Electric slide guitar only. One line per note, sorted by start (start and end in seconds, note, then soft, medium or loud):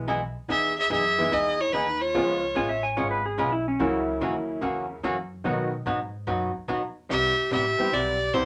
2.56 2.69 G#5 medium
2.69 2.83 E5 medium
2.83 2.97 G#5 medium
2.97 3.10 C#5 medium
3.11 3.24 B4 medium
3.26 3.38 G#4 medium
3.39 3.52 B4 medium
3.52 3.65 E4 medium
3.68 3.80 C#4 medium
3.81 4.60 E4 medium